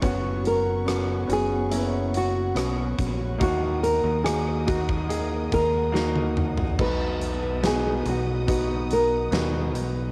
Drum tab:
CC |----------------|----------------|x---------------|
HH |x-x-x-x-x-x-x-x-|x-x-x-x-x-x-----|--x-x-x-x-x-x-x-|
SD |----r-------r---|----r-------o---|----o-------o---|
T1 |----------------|-------------o--|----------------|
T2 |----------------|--------------o-|----------------|
FT |----------------|---------------o|----------------|
BD |o-------------o-|o-----oo--o-----|o-------o-------|